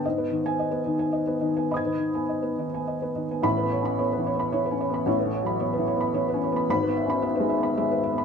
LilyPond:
<<
  \new Staff \with { instrumentName = "Felt piano" } { \time 3/4 \key a \lydian \tempo 4 = 110 << { r8. gis''8 r4. r16 | <b'' dis''' gis'''>2. | b''8 r2 r8 | r2. |
b''8 r2 r8 | } \\ { dis''16 b'16 dis8 dis''16 b'16 dis16 gis''16 dis''16 b'16 dis16 gis''16 | dis''16 b'16 dis16 gis''16 dis''16 b'16 dis16 gis''16 dis''16 b'16 dis16 gis''16 | r16 b'16 cis''16 b''16 cis''16 b'16 cis''16 b''16 cis''16 b'16 cis''16 b''16 | cis''16 b'16 cis''16 b''16 cis''16 b'16 cis''16 b''16 cis''16 b'16 cis''16 b''16 |
r16 b'16 e''16 b''16 e''16 b'16 e''16 b''16 e''16 b'16 e''16 b''16 | } >> }
  \new Staff \with { instrumentName = "Felt piano" } { \time 3/4 \key a \lydian gis,16 b8 b8 b16 dis'16 b8 b16 dis'16 b16 | gis,16 dis8 b8 b16 dis'16 b8 b16 dis'16 b16 | \tuplet 3/2 { <a,, a,>8 b8 cis'8 b8 e8 b8 e8 cis'8 b8 } | \tuplet 3/2 { <a,, a,>8 e8 fis8 b8 e8 b8 e8 cis'8 b8 } |
\tuplet 3/2 { <gis,, gis,>8 b8 cis'8 b8 gis8 b8 gis4 b8 } | }
>>